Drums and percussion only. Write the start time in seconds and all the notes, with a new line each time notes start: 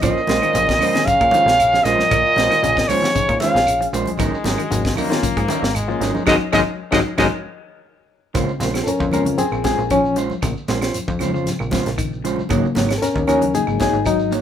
0.02 kick, closed hi-hat, low conga, claves, shekere
0.18 shekere
0.27 snare, closed hi-hat, high conga, shekere
0.42 closed hi-hat, claves, shekere
0.53 closed hi-hat, high conga, shekere
0.67 kick, snare, closed hi-hat, low conga, shekere
0.79 open hi-hat, high conga, low conga, claves, shekere
0.95 snare, closed hi-hat, shekere
1.05 kick, closed hi-hat, high conga, shekere
1.21 kick, closed hi-hat, claves, shekere
1.31 closed hi-hat, high conga, shekere
1.48 snare, shekere
1.60 closed hi-hat, claves, shekere
1.72 snare, shekere
1.85 snare, closed hi-hat, shekere
1.98 snare, high conga, shekere
2.11 kick, closed hi-hat, low conga, claves, shekere
2.26 shekere
2.36 snare, closed hi-hat, high conga, shekere
2.51 snare, closed hi-hat, claves, shekere
2.64 closed hi-hat, shekere
2.77 kick, snare, shekere
2.89 open hi-hat, high conga, low conga, claves, shekere
3.02 snare, high conga, shekere
3.15 kick, closed hi-hat, high conga, shekere
3.29 kick, closed hi-hat, claves, shekere
3.40 snare, closed hi-hat, high conga, shekere
3.55 snare, shekere
3.66 closed hi-hat, claves, shekere
3.81 closed hi-hat, shekere
3.94 closed hi-hat, shekere
4.06 closed hi-hat, high conga, shekere
4.18 kick, closed hi-hat, low conga, claves, shekere
4.34 shekere
4.44 snare, closed hi-hat, high conga, shekere
4.58 closed hi-hat, claves, shekere
4.70 closed hi-hat, high conga, shekere
4.85 kick, snare, closed hi-hat, shekere
4.96 open hi-hat, high conga, low conga, claves, shekere
5.11 snare, closed hi-hat, shekere
5.22 kick, closed hi-hat, high conga, shekere
5.37 kick, closed hi-hat, claves, shekere
5.48 closed hi-hat, high conga, shekere
5.64 snare, shekere
5.75 closed hi-hat, claves, shekere
5.90 shekere
6.01 snare, closed hi-hat, shekere
6.15 high conga, shekere
6.26 kick, snare, high conga, claves, shekere
6.53 kick, snare, high conga, claves, shekere
6.92 kick, snare, high conga, claves, shekere
7.18 kick, snare, high conga, claves, shekere
8.34 kick, snare, closed hi-hat, low conga, claves, shekere
8.48 shekere
8.60 snare, closed hi-hat, high conga, shekere
8.74 snare, closed hi-hat, claves, shekere
8.87 closed hi-hat, high conga, shekere
8.99 kick, low conga, shekere
9.11 closed hi-hat, high conga, low conga, claves, shekere
9.25 closed hi-hat, high conga, shekere
9.38 closed hi-hat, high conga, shekere
9.52 claves, shekere
9.64 kick, snare, closed hi-hat, high conga, shekere
9.79 shekere
9.90 kick, closed hi-hat, claves, shekere
10.05 shekere
10.16 closed hi-hat, shekere
10.30 high conga, shekere
10.42 kick, closed hi-hat, low conga, claves, shekere
10.57 shekere
10.68 snare, closed hi-hat, high conga, shekere
10.81 snare, closed hi-hat, claves, shekere
10.94 closed hi-hat, high conga, shekere
11.08 kick, shekere
11.19 closed hi-hat, high conga, low conga, claves, shekere
11.35 shekere
11.46 snare, closed hi-hat, high conga, shekere
11.59 claves, shekere
11.71 kick, snare, closed hi-hat, high conga, shekere
11.86 snare, closed hi-hat, shekere
11.98 kick, closed hi-hat, claves, shekere
12.13 shekere
12.25 closed hi-hat, shekere
12.36 high conga, shekere
12.49 kick, closed hi-hat, low conga, claves, shekere
12.65 shekere
12.75 snare, closed hi-hat, high conga, shekere
12.89 snare, closed hi-hat, claves, shekere
13.02 snare, closed hi-hat, shekere
13.14 kick, low conga, shekere
13.27 closed hi-hat, high conga, low conga, claves, shekere
13.42 closed hi-hat, high conga, shekere
13.55 closed hi-hat, shekere
13.67 claves, shekere
13.80 kick, snare, closed hi-hat, high conga, shekere
13.94 shekere
14.05 kick, closed hi-hat, claves, shekere
14.19 shekere
14.32 closed hi-hat, shekere